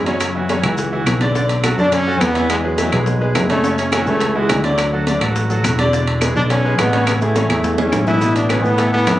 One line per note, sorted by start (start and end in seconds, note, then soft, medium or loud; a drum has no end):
0.00 0.58 F#2 medium
0.06 0.30 C#3 medium
0.06 0.35 F#3 medium
0.06 0.30 C#4 medium
0.06 0.30 C#5 medium
0.06 high bongo soft
0.06 high conga medium
0.06 high timbale medium
0.06 maracas soft
0.20 high bongo medium
0.20 high conga soft
0.20 high timbale medium
0.20 claves medium
0.20 maracas medium
0.35 0.47 E3 medium
0.35 0.47 E4 medium
0.35 0.47 F#4 medium
0.35 high conga soft
0.49 0.61 C#3 medium
0.49 0.61 C#4 medium
0.49 0.62 C#5 medium
0.49 high bongo medium
0.49 high conga loud
0.49 high timbale medium
0.49 maracas medium
0.63 1.03 C#2 loud
0.63 0.87 E3 medium
0.63 0.87 E4 medium
0.63 0.88 F#4 medium
0.63 high bongo soft
0.63 high conga soft
0.63 low conga medium
0.63 high timbale medium
0.63 claves medium
0.63 maracas soft
0.78 high bongo medium
0.78 high conga soft
0.78 low conga medium
0.78 maracas medium
0.92 1.16 E3 medium
0.92 1.16 E4 medium
0.92 1.16 F#4 medium
0.92 high conga soft
1.06 1.73 B1 medium
1.06 high bongo medium
1.06 low bongo medium
1.06 high conga medium
1.06 high timbale medium
1.06 claves medium
1.06 maracas medium
1.21 1.33 D3 medium
1.21 1.33 D4 medium
1.21 1.33 D5 medium
1.21 high bongo soft
1.21 high conga medium
1.21 high timbale medium
1.21 maracas soft
1.35 1.59 D3 medium
1.35 1.59 D4 medium
1.35 1.59 D5 medium
1.35 high bongo medium
1.35 high conga soft
1.35 maracas medium
1.49 high conga soft
1.49 high timbale medium
1.49 maracas medium
1.64 1.76 F#3 medium
1.64 1.76 F#4 medium
1.64 1.76 A4 medium
1.64 high bongo medium
1.64 high conga medium
1.64 high timbale medium
1.64 claves medium
1.64 maracas medium
1.78 2.18 F#2 medium
1.78 2.02 D3 medium
1.78 2.02 D4 medium
1.78 1.96 D4 loud
1.78 2.02 D5 medium
1.78 high bongo soft
1.78 maracas soft
1.92 2.23 C#4 loud
1.92 high bongo medium
1.92 high conga soft
1.92 high timbale medium
1.92 maracas medium
2.07 2.30 F#3 medium
2.07 2.31 F#4 medium
2.07 2.31 A4 medium
2.07 high bongo soft
2.07 high conga soft
2.20 2.87 E2 medium
2.20 2.50 B3 loud
2.20 high bongo medium
2.20 low bongo medium
2.20 high conga medium
2.20 high timbale medium
2.20 claves medium
2.20 maracas medium
2.35 2.59 E3 medium
2.35 2.59 E4 medium
2.35 2.59 E5 medium
2.35 high bongo soft
2.35 high conga medium
2.35 high timbale medium
2.35 maracas soft
2.50 2.57 G#3 loud
2.50 high bongo medium
2.50 high conga soft
2.50 high timbale loud
2.50 claves medium
2.50 maracas medium
2.64 3.17 F#3 medium
2.64 2.76 G#3 medium
2.64 2.76 G#4 medium
2.64 2.76 B4 medium
2.78 2.90 E3 medium
2.78 2.91 E4 medium
2.78 2.91 E5 medium
2.78 high bongo medium
2.78 high conga medium
2.78 high timbale medium
2.78 maracas medium
2.92 3.32 B1 medium
2.92 3.16 G#3 medium
2.92 3.16 G#4 medium
2.92 3.17 B4 medium
2.92 high bongo soft
2.92 high conga soft
2.92 low conga medium
2.92 high timbale medium
2.92 claves medium
2.92 maracas soft
3.06 high bongo medium
3.06 high conga soft
3.06 low conga medium
3.06 maracas medium
3.21 3.45 G#3 medium
3.21 3.45 G#4 medium
3.21 3.45 B4 medium
3.21 high conga soft
3.35 4.02 F#1 medium
3.35 high bongo medium
3.35 low bongo medium
3.35 high conga medium
3.35 high timbale medium
3.35 low timbale medium
3.35 claves medium
3.35 maracas medium
3.49 3.61 C#3 medium
3.49 3.77 A3 medium
3.49 3.62 C#4 medium
3.49 3.62 C#5 medium
3.49 high bongo soft
3.49 high conga medium
3.49 high timbale medium
3.49 maracas soft
3.64 3.87 C#3 medium
3.64 3.88 C#4 medium
3.64 3.88 C#5 medium
3.64 high bongo medium
3.64 high conga soft
3.64 maracas medium
3.78 3.92 C#4 medium
3.78 high conga soft
3.78 high timbale medium
3.78 maracas medium
3.92 4.04 E3 medium
3.92 4.07 C#4 loud
3.92 4.05 E4 medium
3.92 4.05 F#4 medium
3.92 high bongo medium
3.92 high conga loud
3.92 high timbale medium
3.92 claves medium
3.92 maracas medium
4.06 4.46 C#2 loud
4.06 4.30 C#3 medium
4.06 4.38 A3 loud
4.06 4.31 C#4 medium
4.06 4.31 C#5 medium
4.06 high bongo soft
4.06 maracas soft
4.21 high bongo medium
4.21 high conga soft
4.21 high timbale medium
4.21 maracas medium
4.35 4.59 E3 medium
4.35 4.66 G#3 medium
4.35 4.59 E4 medium
4.35 4.59 F#4 medium
4.35 high bongo soft
4.35 high conga soft
4.49 5.16 D2 medium
4.49 high bongo medium
4.49 low bongo medium
4.49 high conga medium
4.49 high timbale loud
4.49 low timbale medium
4.49 claves medium
4.49 maracas medium
4.64 4.87 D3 medium
4.64 4.93 F#3 medium
4.64 4.88 D4 medium
4.64 4.88 D5 medium
4.64 high bongo soft
4.64 high conga medium
4.64 high timbale medium
4.64 maracas soft
4.78 high bongo medium
4.78 high conga soft
4.78 high timbale medium
4.78 claves medium
4.78 maracas medium
4.92 5.05 F#3 medium
4.92 5.05 F#4 medium
4.92 5.05 A4 medium
4.92 high conga soft
5.07 5.19 D3 medium
5.07 5.19 D4 medium
5.07 5.19 D5 medium
5.07 high bongo medium
5.07 high conga medium
5.07 high timbale medium
5.07 maracas medium
5.21 5.61 A1 medium
5.21 5.45 F#3 medium
5.21 5.45 F#4 medium
5.21 5.45 A4 medium
5.21 high bongo soft
5.21 high conga soft
5.21 low conga medium
5.21 high timbale medium
5.21 claves medium
5.21 maracas soft
5.36 high bongo medium
5.36 high conga soft
5.36 maracas medium
5.50 5.74 F#3 medium
5.50 5.74 F#4 medium
5.50 5.74 A4 medium
5.50 high conga soft
5.50 maracas medium
5.64 6.30 E1 medium
5.64 high bongo medium
5.64 low bongo medium
5.64 high conga medium
5.64 high timbale medium
5.64 claves medium
5.64 maracas medium
5.79 5.90 D3 medium
5.79 5.91 D4 medium
5.79 5.91 D5 medium
5.79 high bongo soft
5.79 high conga medium
5.79 high timbale medium
5.79 maracas soft
5.93 6.17 D3 medium
5.93 6.17 D4 medium
5.93 6.17 D5 medium
5.93 high bongo medium
5.93 high conga soft
5.93 maracas medium
6.07 high timbale medium
6.21 6.33 G#3 medium
6.21 6.33 G#4 medium
6.21 6.34 B4 medium
6.21 high bongo medium
6.21 high conga loud
6.21 high timbale medium
6.21 claves medium
6.21 maracas medium
6.36 6.76 B1 loud
6.36 6.60 D3 medium
6.36 6.43 D4 loud
6.36 6.60 D4 medium
6.36 6.60 D5 medium
6.36 high bongo soft
6.36 maracas soft
6.50 6.77 C#4 loud
6.50 high bongo medium
6.50 high conga soft
6.50 high timbale medium
6.50 maracas medium
6.65 6.88 G#3 medium
6.65 6.88 G#4 medium
6.65 6.88 B4 medium
6.65 high bongo soft
6.65 high conga soft
6.78 7.45 A1 medium
6.78 7.05 B3 medium
6.78 high bongo medium
6.78 low bongo medium
6.78 high conga medium
6.78 high timbale medium
6.78 claves medium
6.78 maracas medium
6.93 7.16 C#3 medium
6.93 7.17 C#4 medium
6.93 7.17 C#5 medium
6.93 high bongo soft
6.93 high conga medium
6.93 high timbale medium
6.93 maracas soft
7.07 7.13 B3 medium
7.07 high bongo medium
7.07 high conga medium
7.07 high timbale medium
7.07 claves medium
7.07 maracas medium
7.21 7.33 E3 medium
7.21 7.74 A3 medium
7.21 7.34 E4 medium
7.21 7.34 G#4 medium
7.21 maracas medium
7.35 7.47 C#3 medium
7.35 7.48 C#4 medium
7.35 7.48 C#5 medium
7.35 high bongo medium
7.35 high conga loud
7.35 high timbale medium
7.35 maracas medium
7.49 7.90 E2 medium
7.49 7.73 E3 medium
7.49 7.73 E4 medium
7.49 7.74 G#4 medium
7.49 high bongo soft
7.49 low conga medium
7.49 high timbale medium
7.49 claves medium
7.49 maracas soft
7.64 high bongo medium
7.64 low conga medium
7.64 maracas medium
7.78 8.02 E3 medium
7.78 8.05 C#4 loud
7.78 8.02 E4 medium
7.78 8.03 G#4 medium
7.78 low conga medium
7.78 high timbale loud
7.92 8.59 A1 medium
7.92 high bongo medium
7.92 low bongo medium
7.92 low conga medium
7.92 low timbale medium
7.92 claves medium
7.92 maracas medium
8.07 8.19 B2 medium
8.07 8.19 B3 medium
8.07 8.34 E4 loud
8.07 8.19 B4 medium
8.07 high bongo soft
8.07 low conga medium
8.07 low timbale medium
8.07 maracas soft
8.21 8.45 B2 medium
8.21 8.45 B3 medium
8.21 8.45 B4 medium
8.21 high bongo medium
8.21 high conga soft
8.21 maracas medium
8.36 8.52 D4 medium
8.36 high conga soft
8.36 high timbale medium
8.36 maracas medium
8.49 8.74 B2 medium
8.49 8.74 B3 medium
8.49 8.66 C#4 loud
8.49 8.74 B4 medium
8.49 high bongo medium
8.49 high conga loud
8.49 high timbale medium
8.49 claves medium
8.49 maracas medium
8.64 9.04 A2 medium
8.64 8.93 B3 loud
8.64 high bongo soft
8.64 maracas soft
8.78 8.90 E3 medium
8.78 8.90 E4 medium
8.78 8.91 A4 medium
8.78 high bongo medium
8.78 high conga soft
8.78 high timbale medium
8.78 maracas medium
8.92 9.16 E3 medium
8.92 9.20 B3 loud
8.92 9.16 E4 medium
8.92 9.16 A4 medium
8.92 high bongo soft
8.92 high conga soft
9.07 9.20 F#2 medium
9.07 high bongo medium
9.07 low bongo medium
9.07 high conga medium
9.07 high timbale medium
9.07 low timbale medium
9.07 claves medium
9.07 maracas medium